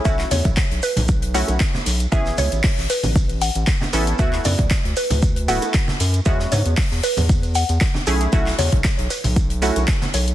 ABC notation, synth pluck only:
X:1
M:4/4
L:1/8
Q:"Swing 16ths" 1/4=116
K:Bmix
V:1 name="Synth pluck"
e c2 B2 f3 | e c2 B2 f3 | e =d2 B2 f3 | e c2 B2 f3 |
e c2 B3 z c |]